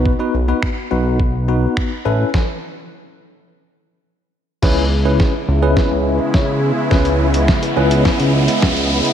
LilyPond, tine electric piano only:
\new Staff \with { instrumentName = "Tine electric piano" } { \time 4/4 \key cis \minor \tempo 4 = 105 r16 <b dis' fis' b'>16 r16 <b dis' fis' b'>16 r8 <b dis' fis' b'>8 r8 <b dis' fis' b'>8. r16 <cis' e' a' b'>8 | r1 | <cis' e' gis' b'>16 r8 <cis' e' gis' b'>8 r8 <cis' e' gis' b'>4 r4 r16 | <cis' e' gis' b'>8 r8. <gis' b'>16 <cis' e' gis' b'>4 r4. | }